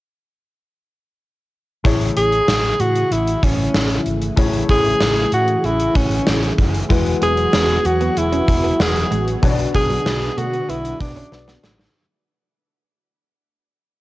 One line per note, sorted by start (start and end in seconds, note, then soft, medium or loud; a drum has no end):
1.84 2.08 A1 medium
1.84 2.76 A2 medium
1.84 6.86 C#3 medium
1.84 9.39 E3 medium
1.84 4.33 A3 medium
1.84 6.86 A3 medium
1.84 4.33 E4 medium
1.84 6.86 E4 medium
1.84 9.39 G#4 medium
1.84 4.34 G#4 medium
1.84 4.34 C#5 medium
1.84 kick loud
1.84 closed hi-hat medium
2.01 closed hi-hat soft
2.16 2.39 A1 medium
2.16 2.82 G#4 loud
2.16 closed hi-hat medium
2.32 closed hi-hat soft
2.48 2.71 A1 medium
2.48 snare medium
2.64 closed hi-hat soft
2.80 3.02 A2 medium
2.80 3.14 F#4 medium
2.80 closed hi-hat medium
2.95 closed hi-hat soft
3.11 3.34 A1 medium
3.11 3.46 E4 medium
3.11 closed hi-hat medium
3.27 closed hi-hat medium
3.43 3.65 A1 medium
3.43 4.07 C#4 medium
3.43 kick medium
3.43 closed hi-hat medium
3.59 closed hi-hat soft
3.74 3.97 A1 medium
3.74 snare loud
3.90 closed hi-hat medium
4.06 4.29 G#1 medium
4.06 closed hi-hat medium
4.22 closed hi-hat medium
4.36 4.60 A1 loud
4.36 5.28 A2 medium
4.36 6.86 A3 medium
4.36 6.86 E4 medium
4.36 6.86 G#4 medium
4.36 6.87 C#5 medium
4.36 kick loud
4.36 closed hi-hat medium
4.54 closed hi-hat soft
4.69 4.92 A1 medium
4.69 5.29 G#4 loud
4.69 kick medium
4.69 closed hi-hat medium
4.85 closed hi-hat soft
5.01 5.23 A1 medium
5.01 snare loud
5.16 closed hi-hat soft
5.32 5.55 A2 medium
5.32 5.67 F#4 medium
5.32 closed hi-hat medium
5.48 closed hi-hat soft
5.64 5.87 A1 loud
5.64 5.98 E4 medium
5.64 closed hi-hat medium
5.80 closed hi-hat medium
5.95 6.18 A1 medium
5.95 6.59 C#4 medium
5.95 kick medium
5.95 closed hi-hat medium
6.11 closed hi-hat soft
6.27 6.50 A1 medium
6.27 snare loud
6.43 closed hi-hat medium
6.58 6.81 F#1 medium
6.58 kick medium
6.58 closed hi-hat medium
6.74 closed hi-hat medium
6.89 7.13 E1 medium
6.89 7.81 E3 medium
6.89 11.91 F#3 medium
6.89 9.38 G#3 medium
6.89 7.00 G#3 medium
6.89 9.40 B3 medium
6.89 9.38 E4 medium
6.89 11.91 F#4 medium
6.89 9.39 F#4 medium
6.89 9.39 B4 medium
6.89 kick loud
6.89 closed hi-hat medium
7.06 closed hi-hat soft
7.22 7.44 E1 medium
7.22 7.31 B3 medium
7.22 7.88 G#4 loud
7.22 closed hi-hat medium
7.37 muted clean electric guitar stroke soft
7.37 closed hi-hat soft
7.53 7.76 E1 medium
7.53 7.63 C#4 medium
7.53 snare loud
7.69 muted clean electric guitar stroke soft
7.69 closed hi-hat soft
7.85 8.08 E2 medium
7.85 8.19 F#4 medium
7.85 closed hi-hat medium
8.01 8.10 B3 medium
8.01 closed hi-hat soft
8.17 8.39 E1 medium
8.17 8.82 E4 medium
8.17 closed hi-hat medium
8.32 8.42 C#4 medium
8.32 closed hi-hat medium
8.48 8.71 E1 medium
8.48 muted clean electric guitar stroke soft
8.48 kick medium
8.48 closed hi-hat medium
8.64 8.73 B3 medium
8.64 closed hi-hat soft
8.80 9.02 E1 medium
8.80 9.28 G#4 medium
8.80 snare loud
8.96 closed hi-hat medium
9.11 9.34 A1 medium
9.11 9.20 G#3 medium
9.11 closed hi-hat medium
9.28 closed hi-hat medium
9.42 9.65 B1 medium
9.42 11.93 B2 medium
9.42 10.33 B2 medium
9.42 11.93 D3 medium
9.42 11.28 B3 medium
9.42 11.28 D4 medium
9.42 11.93 D4 medium
9.42 11.29 F#4 medium
9.42 9.50 C#5 medium
9.42 kick loud
9.42 closed hi-hat medium
9.51 11.32 D5 medium
9.58 muted clean electric guitar stroke soft
9.58 closed hi-hat soft
9.74 9.97 B1 medium
9.74 9.84 F#3 medium
9.74 10.40 G#4 loud
9.74 kick medium
9.74 closed hi-hat medium
9.90 9.99 F#3 medium
9.90 closed hi-hat soft
10.06 10.28 B1 medium
10.06 muted clean electric guitar stroke soft
10.06 snare loud
10.22 closed hi-hat soft
10.37 10.60 B2 medium
10.37 10.47 A3 medium
10.37 10.71 F#4 medium
10.37 closed hi-hat medium
10.53 10.63 B3 medium
10.53 closed hi-hat soft
10.69 10.92 B1 medium
10.69 10.78 B3 medium
10.69 11.00 E4 medium
10.69 closed hi-hat medium
10.85 closed hi-hat medium
11.00 11.23 B1 medium
11.00 11.60 D4 medium
11.00 muted clean electric guitar stroke soft
11.00 kick medium
11.00 closed hi-hat medium
11.16 11.26 C#4 medium
11.16 closed hi-hat soft
11.32 11.55 B1 medium
11.32 11.95 B3 soft
11.32 11.95 D4 soft
11.32 11.96 F#4 soft
11.32 11.96 D5 medium
11.32 muted clean electric guitar stroke soft
11.32 snare soft
11.48 11.57 B3 medium
11.48 snare medium
11.63 11.86 A1 medium
11.63 11.73 A3 medium
11.63 snare medium
11.80 snare medium